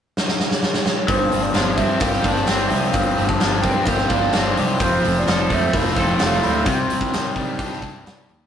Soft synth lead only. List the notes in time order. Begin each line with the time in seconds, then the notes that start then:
1.09 C5
1.42 D5
1.77 E5
2.00 F5
2.33 G5
2.68 E5
2.91 F5
3.28 A5
3.62 G5
3.84 F5
4.83 C5
5.18 D5
5.54 E5
5.77 F5
6.14 G5
6.25 F5
6.73 G5